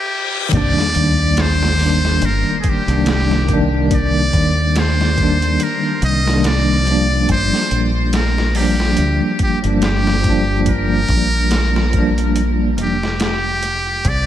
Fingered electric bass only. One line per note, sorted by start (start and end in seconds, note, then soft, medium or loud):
0.53 0.74 C2 medium
0.96 2.19 D#2 medium
2.22 2.43 G1 medium
2.88 4.29 C2 medium
4.34 5.56 D#2 medium
6.02 7.25 C2 medium
7.29 7.50 G1 medium
7.71 8.94 A#1 medium
8.98 9.19 D2 medium
9.64 11.05 G1 medium
11.09 12.79 A#1 medium
12.79 14.02 F1 medium
14.05 14.26 C2 medium